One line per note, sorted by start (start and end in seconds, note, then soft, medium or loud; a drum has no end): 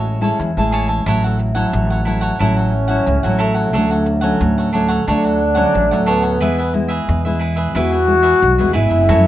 0.00 0.30 A1 loud
0.00 0.37 A2 medium
0.00 0.18 G#3 medium
0.00 0.18 C#4 medium
0.00 0.18 E4 medium
0.00 0.23 C#5 soft
0.00 0.22 E5 soft
0.00 0.21 A5 soft
0.21 0.50 G#3 medium
0.21 0.50 C#4 medium
0.21 0.51 E4 medium
0.21 0.39 C#5 soft
0.21 0.38 E5 medium
0.21 0.38 A5 medium
0.40 0.54 E2 medium
0.40 1.03 E3 medium
0.40 muted cavaquinho stroke soft
0.57 0.99 A1 medium
0.57 1.02 G#3 medium
0.57 1.02 C#4 medium
0.57 1.02 E4 medium
0.57 0.72 C#5 soft
0.57 0.72 E5 soft
0.57 0.73 A5 soft
0.72 0.88 G#4 medium
0.72 0.88 C#5 medium
0.72 0.88 E5 medium
0.72 0.87 A5 medium
0.88 1.05 C#5 soft
0.88 1.05 E5 soft
0.88 1.04 A5 soft
1.06 1.63 A1 loud
1.06 1.70 A2 medium
1.06 1.51 F#3 medium
1.06 1.51 C#4 medium
1.06 1.22 E4 medium
1.06 1.52 E4 medium
1.06 1.23 A4 medium
1.06 1.23 C#5 medium
1.06 1.23 F#5 medium
1.24 1.38 A4 soft
1.24 1.38 C#5 soft
1.24 1.39 F#5 medium
1.39 muted cavaquinho stroke soft
1.54 2.01 F#3 medium
1.54 2.01 C#4 medium
1.54 2.01 E4 medium
1.54 1.89 A4 medium
1.54 1.88 C#5 medium
1.54 1.88 F#5 medium
1.73 2.30 A1 loud
1.73 2.37 A2 medium
1.90 2.05 A4 soft
1.90 2.05 C#5 soft
1.90 2.06 F#5 soft
2.05 2.35 F#3 medium
2.05 2.35 C#4 medium
2.05 2.22 E4 medium
2.05 2.35 E4 medium
2.05 2.21 A4 medium
2.05 2.21 C#5 medium
2.05 2.20 F#5 medium
2.21 2.39 A4 medium
2.21 2.38 C#5 medium
2.21 2.38 F#5 medium
2.39 2.97 A1 loud
2.39 3.04 A2 medium
2.39 2.72 F#3 medium
2.39 2.72 C#4 medium
2.39 3.37 C#4 medium
2.39 2.55 E4 medium
2.39 2.72 E4 medium
2.39 2.56 A4 medium
2.39 2.56 C#5 medium
2.39 2.55 F#5 medium
2.56 2.88 A4 soft
2.56 2.87 C#5 soft
2.56 2.86 F#5 soft
2.88 3.18 F#3 medium
2.88 3.18 C#4 medium
2.88 3.18 E4 medium
2.88 3.05 A4 medium
2.88 3.05 C#5 medium
2.88 3.05 F#5 medium
3.06 3.21 C#2 medium
3.06 3.71 A2 medium
3.06 muted cavaquinho stroke soft
3.23 3.74 A1 medium
3.23 3.69 F#3 medium
3.23 3.69 C#4 medium
3.23 3.69 E4 medium
3.23 3.38 A4 soft
3.23 3.39 C#5 soft
3.23 3.39 F#5 medium
3.38 4.37 A3 medium
3.38 3.55 E4 medium
3.38 3.55 A4 medium
3.38 3.54 C#5 medium
3.38 3.53 F#5 medium
3.54 3.72 A4 soft
3.54 3.72 C#5 soft
3.54 3.71 F#5 medium
3.73 4.31 D2 loud
3.73 4.38 D3 medium
3.73 4.19 F#3 medium
3.73 4.19 A3 medium
3.73 4.20 C#4 medium
3.73 3.89 D4 medium
3.73 3.89 A4 medium
3.73 3.90 C#5 medium
3.73 3.90 F#5 medium
3.91 4.05 A4 soft
3.91 4.05 C#5 soft
3.91 4.05 F#5 medium
4.06 muted cavaquinho stroke soft
4.21 4.68 F#3 medium
4.21 4.69 A3 medium
4.21 4.69 C#4 medium
4.21 4.56 A4 medium
4.21 4.55 C#5 medium
4.21 4.55 F#5 medium
4.41 4.98 D2 medium
4.41 5.05 A2 medium
4.58 4.72 A4 soft
4.58 4.72 C#5 soft
4.58 4.73 F#5 soft
4.73 5.02 F#3 medium
4.73 5.03 A3 medium
4.73 5.03 C#4 medium
4.73 4.89 D4 medium
4.73 4.89 A4 medium
4.73 4.88 C#5 medium
4.73 4.87 F#5 medium
4.88 5.06 A4 medium
4.88 5.06 C#5 medium
4.88 5.05 F#5 medium
5.07 5.65 D2 loud
5.07 5.72 D3 medium
5.07 5.40 F#3 medium
5.07 5.40 A3 medium
5.07 5.23 D4 medium
5.07 6.04 D4 medium
5.07 5.23 A4 medium
5.07 5.24 C#5 medium
5.07 5.23 F#5 medium
5.24 5.56 A4 soft
5.24 5.55 C#5 soft
5.24 5.54 F#5 soft
5.55 5.85 F#3 medium
5.55 5.85 A3 medium
5.55 5.86 C#4 medium
5.55 5.73 A4 medium
5.55 5.72 C#5 medium
5.55 5.72 F#5 medium
5.74 5.89 A1 medium
5.74 6.38 A2 medium
5.74 muted cavaquinho stroke soft
5.91 6.42 D2 medium
5.91 6.36 F#3 medium
5.91 6.37 A3 medium
5.91 6.37 C#4 medium
5.91 6.06 A4 soft
5.91 6.06 C#5 soft
5.91 6.06 F#5 medium
6.06 7.04 B3 medium
6.06 6.23 D4 medium
6.06 6.23 A4 medium
6.06 6.22 C#5 medium
6.06 6.21 F#5 medium
6.22 6.40 A4 soft
6.22 6.39 C#5 soft
6.22 6.39 F#5 soft
6.40 6.98 E2 loud
6.40 7.05 E3 medium
6.40 6.61 G#3 medium
6.40 6.61 B3 medium
6.40 6.56 E4 medium
6.40 6.62 E4 medium
6.40 6.57 G#4 medium
6.40 6.57 B4 medium
6.40 6.57 E5 medium
6.58 6.72 G#4 soft
6.58 6.73 B4 soft
6.58 6.73 E5 medium
6.73 7.19 G#3 medium
6.73 7.19 B3 medium
6.73 7.20 E4 medium
6.73 muted cavaquinho stroke soft
6.88 7.23 G#4 medium
6.88 7.23 B4 medium
6.88 7.22 E5 medium
7.08 7.65 E2 loud
7.08 7.72 B2 medium
7.25 7.70 G#3 medium
7.25 7.70 B3 medium
7.25 7.71 E4 medium
7.25 7.39 G#4 soft
7.25 7.40 B4 soft
7.25 7.40 E5 soft
7.39 7.56 E4 medium
7.39 7.57 G#4 medium
7.39 7.56 B4 medium
7.39 7.55 E5 medium
7.56 7.74 G#4 medium
7.56 7.73 B4 medium
7.56 7.73 E5 medium
7.75 8.32 E2 loud
7.75 8.39 E3 medium
7.75 7.95 G#3 medium
7.75 7.95 B3 medium
7.75 7.90 E4 medium
7.75 7.95 E4 medium
7.75 8.72 F#4 loud
7.75 7.91 G#4 medium
7.75 7.91 B4 medium
7.75 7.91 E5 medium
7.92 8.23 G#4 soft
7.92 8.22 B4 soft
7.92 8.21 E5 soft
8.07 8.53 G#3 soft
8.07 8.53 B3 medium
8.07 8.53 E4 medium
8.23 8.40 G#4 medium
8.23 8.40 B4 medium
8.23 8.39 E5 medium
8.41 8.57 B1 medium
8.41 9.06 B2 medium
8.41 muted cavaquinho stroke soft
8.58 8.74 E2 medium
8.58 9.04 G#3 medium
8.58 9.04 B3 medium
8.58 9.04 E4 medium
8.58 8.73 G#4 soft
8.58 8.73 B4 soft
8.58 8.74 E5 soft
8.73 8.90 G#1 medium
8.73 8.90 E4 medium
8.73 9.27 E4 loud
8.73 8.90 G#4 medium
8.73 8.89 B4 medium
8.73 8.88 E5 medium
8.89 9.10 F#1 medium
8.89 9.07 G#4 soft
8.89 9.07 B4 soft
8.89 9.06 E5 soft
9.08 9.27 F#2 medium
9.08 9.27 F#2 loud
9.08 9.27 E3 medium
9.08 9.27 A3 medium
9.08 9.27 C#4 medium
9.08 9.24 F#4 medium
9.08 9.25 A4 medium
9.08 9.25 C#5 medium
9.08 9.25 E5 medium